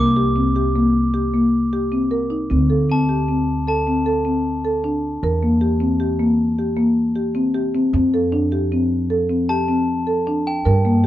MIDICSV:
0, 0, Header, 1, 4, 480
1, 0, Start_track
1, 0, Tempo, 388350
1, 3096, Time_signature, 7, 2, 24, 8
1, 13680, End_track
2, 0, Start_track
2, 0, Title_t, "Glockenspiel"
2, 0, Program_c, 0, 9
2, 0, Note_on_c, 0, 86, 63
2, 1335, Note_off_c, 0, 86, 0
2, 3603, Note_on_c, 0, 81, 61
2, 4535, Note_off_c, 0, 81, 0
2, 4550, Note_on_c, 0, 81, 60
2, 5914, Note_off_c, 0, 81, 0
2, 11731, Note_on_c, 0, 81, 70
2, 12944, Note_on_c, 0, 79, 62
2, 13103, Note_off_c, 0, 81, 0
2, 13388, Note_off_c, 0, 79, 0
2, 13680, End_track
3, 0, Start_track
3, 0, Title_t, "Marimba"
3, 0, Program_c, 1, 12
3, 0, Note_on_c, 1, 58, 61
3, 151, Note_off_c, 1, 58, 0
3, 202, Note_on_c, 1, 67, 71
3, 387, Note_off_c, 1, 67, 0
3, 442, Note_on_c, 1, 60, 62
3, 627, Note_off_c, 1, 60, 0
3, 691, Note_on_c, 1, 67, 68
3, 872, Note_off_c, 1, 67, 0
3, 934, Note_on_c, 1, 58, 65
3, 1293, Note_off_c, 1, 58, 0
3, 1409, Note_on_c, 1, 67, 62
3, 1591, Note_off_c, 1, 67, 0
3, 1658, Note_on_c, 1, 58, 67
3, 2016, Note_off_c, 1, 58, 0
3, 2141, Note_on_c, 1, 67, 63
3, 2319, Note_off_c, 1, 67, 0
3, 2375, Note_on_c, 1, 60, 62
3, 2555, Note_off_c, 1, 60, 0
3, 2611, Note_on_c, 1, 70, 67
3, 2793, Note_off_c, 1, 70, 0
3, 2849, Note_on_c, 1, 63, 67
3, 3031, Note_off_c, 1, 63, 0
3, 3093, Note_on_c, 1, 60, 68
3, 3274, Note_off_c, 1, 60, 0
3, 3336, Note_on_c, 1, 69, 60
3, 3516, Note_off_c, 1, 69, 0
3, 3579, Note_on_c, 1, 60, 66
3, 3758, Note_off_c, 1, 60, 0
3, 3818, Note_on_c, 1, 67, 57
3, 3997, Note_off_c, 1, 67, 0
3, 4059, Note_on_c, 1, 60, 62
3, 4418, Note_off_c, 1, 60, 0
3, 4540, Note_on_c, 1, 69, 63
3, 4719, Note_off_c, 1, 69, 0
3, 4782, Note_on_c, 1, 60, 59
3, 4960, Note_off_c, 1, 60, 0
3, 5018, Note_on_c, 1, 69, 66
3, 5198, Note_off_c, 1, 69, 0
3, 5253, Note_on_c, 1, 60, 63
3, 5614, Note_off_c, 1, 60, 0
3, 5743, Note_on_c, 1, 69, 65
3, 5921, Note_off_c, 1, 69, 0
3, 5984, Note_on_c, 1, 62, 64
3, 6341, Note_off_c, 1, 62, 0
3, 6471, Note_on_c, 1, 70, 72
3, 6646, Note_off_c, 1, 70, 0
3, 6707, Note_on_c, 1, 58, 65
3, 6884, Note_off_c, 1, 58, 0
3, 6937, Note_on_c, 1, 67, 69
3, 7118, Note_off_c, 1, 67, 0
3, 7174, Note_on_c, 1, 60, 64
3, 7356, Note_off_c, 1, 60, 0
3, 7415, Note_on_c, 1, 67, 66
3, 7596, Note_off_c, 1, 67, 0
3, 7657, Note_on_c, 1, 58, 63
3, 8017, Note_off_c, 1, 58, 0
3, 8139, Note_on_c, 1, 67, 65
3, 8319, Note_off_c, 1, 67, 0
3, 8363, Note_on_c, 1, 58, 68
3, 8728, Note_off_c, 1, 58, 0
3, 8843, Note_on_c, 1, 67, 64
3, 9029, Note_off_c, 1, 67, 0
3, 9081, Note_on_c, 1, 60, 67
3, 9267, Note_off_c, 1, 60, 0
3, 9323, Note_on_c, 1, 67, 69
3, 9509, Note_off_c, 1, 67, 0
3, 9570, Note_on_c, 1, 60, 67
3, 9753, Note_off_c, 1, 60, 0
3, 9814, Note_on_c, 1, 60, 79
3, 9996, Note_off_c, 1, 60, 0
3, 10058, Note_on_c, 1, 69, 64
3, 10238, Note_off_c, 1, 69, 0
3, 10288, Note_on_c, 1, 62, 76
3, 10472, Note_off_c, 1, 62, 0
3, 10532, Note_on_c, 1, 67, 67
3, 10714, Note_off_c, 1, 67, 0
3, 10777, Note_on_c, 1, 60, 68
3, 11136, Note_off_c, 1, 60, 0
3, 11248, Note_on_c, 1, 69, 69
3, 11432, Note_off_c, 1, 69, 0
3, 11484, Note_on_c, 1, 60, 61
3, 11669, Note_off_c, 1, 60, 0
3, 11735, Note_on_c, 1, 67, 69
3, 11916, Note_off_c, 1, 67, 0
3, 11966, Note_on_c, 1, 60, 66
3, 12330, Note_off_c, 1, 60, 0
3, 12445, Note_on_c, 1, 69, 67
3, 12630, Note_off_c, 1, 69, 0
3, 12696, Note_on_c, 1, 62, 67
3, 13056, Note_off_c, 1, 62, 0
3, 13171, Note_on_c, 1, 70, 78
3, 13353, Note_off_c, 1, 70, 0
3, 13413, Note_on_c, 1, 58, 66
3, 13595, Note_off_c, 1, 58, 0
3, 13680, End_track
4, 0, Start_track
4, 0, Title_t, "Upright bass"
4, 0, Program_c, 2, 32
4, 0, Note_on_c, 2, 36, 71
4, 3050, Note_off_c, 2, 36, 0
4, 3101, Note_on_c, 2, 38, 63
4, 6413, Note_off_c, 2, 38, 0
4, 6462, Note_on_c, 2, 40, 67
4, 9772, Note_off_c, 2, 40, 0
4, 9804, Note_on_c, 2, 41, 72
4, 13122, Note_off_c, 2, 41, 0
4, 13175, Note_on_c, 2, 43, 76
4, 13680, Note_off_c, 2, 43, 0
4, 13680, End_track
0, 0, End_of_file